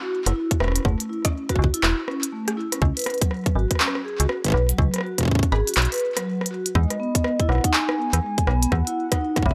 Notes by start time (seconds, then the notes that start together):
0.02 F#4
0.26 F#1 E4, cross-stick, closed hi-hat
0.36 E4
0.51 kick, closed hi-hat
0.60 E1 C#4, cross-stick
0.64 cross-stick
0.68 cross-stick
0.72 cross-stick
0.76 cross-stick, closed hi-hat
0.78 cross-stick
0.80 cross-stick
0.83 cross-stick
0.85 F#1 A3, kick, cross-stick
1.00 closed hi-hat
1.10 E4
1.25 C#4, kick, cross-stick, closed hi-hat
1.49 F#4, kick, cross-stick, closed hi-hat
1.56 C#2, kick
1.64 kick
1.74 E4, closed hi-hat
1.83 E1 E4, cross-stick, clap
2.08 C#4, cross-stick
2.23 closed hi-hat
2.33 A3
2.48 cross-stick, closed hi-hat
2.57 E4
2.72 C#4, cross-stick, closed hi-hat
2.82 C#2, kick
2.97 B4, closed hi-hat
2.99 closed hi-hat
3.02 closed hi-hat
3.04 cross-stick, closed hi-hat
3.06 closed hi-hat
3.10 closed hi-hat
3.14 closed hi-hat
3.18 kick, closed hi-hat
3.22 F#3, closed hi-hat
3.31 F#3, cross-stick
3.46 kick, closed hi-hat
3.55 G#1 F#4
3.71 kick, cross-stick, closed hi-hat
3.75 cross-stick
3.80 C#4, cross-stick, clap
3.88 cross-stick
3.95 cross-stick
4.05 G#4
4.20 C#2 F#4, closed hi-hat
4.29 cross-stick
4.44 B4, kick, closed hi-hat
4.46 kick
4.48 kick
4.50 kick
4.52 B1, kick, cross-stick
4.69 F#3, closed hi-hat
4.78 C#2 F#3, kick
4.94 cross-stick, closed hi-hat
4.96 cross-stick
4.98 cross-stick
5.01 F#4, cross-stick
5.18 kick, cross-stick, closed hi-hat
5.21 kick
5.23 kick
5.25 C#4, kick
5.28 kick
5.31 kick
5.35 kick
5.39 kick
5.43 kick, closed hi-hat
5.52 G#1 G#4, cross-stick
5.67 F#4, closed hi-hat
5.74 cross-stick, clap, closed hi-hat
5.77 B1, closed hi-hat
5.82 closed hi-hat
5.85 closed hi-hat
5.92 B4, closed hi-hat
5.94 closed hi-hat
5.96 closed hi-hat
5.98 closed hi-hat
6.00 closed hi-hat
6.17 F#3, cross-stick, closed hi-hat
6.26 F#3
6.41 cross-stick
6.46 closed hi-hat
6.51 F#4
6.66 closed hi-hat
6.75 E2 G#3 D#5, kick
6.90 cross-stick, closed hi-hat
7.00 B3
7.15 B3, kick, closed hi-hat
7.24 cross-stick
7.40 E4, kick, closed hi-hat
7.49 B1 F#5, cross-stick
7.52 cross-stick
7.55 cross-stick
7.58 cross-stick
7.64 D#4, kick, closed hi-hat
7.74 D#4 G#5, clap
7.89 cross-stick
7.98 B3
8.13 E2, cross-stick, closed hi-hat
8.23 G#3
8.38 kick, closed hi-hat
8.47 B1 B3, cross-stick
8.63 B3, closed hi-hat
8.72 E2 F#5, kick, cross-stick
8.87 E4, closed hi-hat
9.12 D#4, kick, cross-stick, closed hi-hat
9.21 D#4
9.36 kick, cross-stick, closed hi-hat
9.43 kick
9.46 B1 B3 E5, kick
9.51 kick